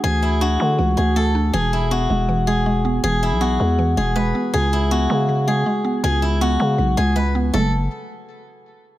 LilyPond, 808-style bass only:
\new Staff \with { instrumentName = "808-style bass" } { \clef bass \time 4/4 \key fis \minor \tempo 4 = 160 d,4. d8 cis,8 d,4. | e,,4. e,,2~ e,,8 | e,,8. b,,8. e,4 e,,4 r8 | cis,4. cis4. r4 |
cis,4. cis8 b,,8 cis,4. | fis,,4 r2. | }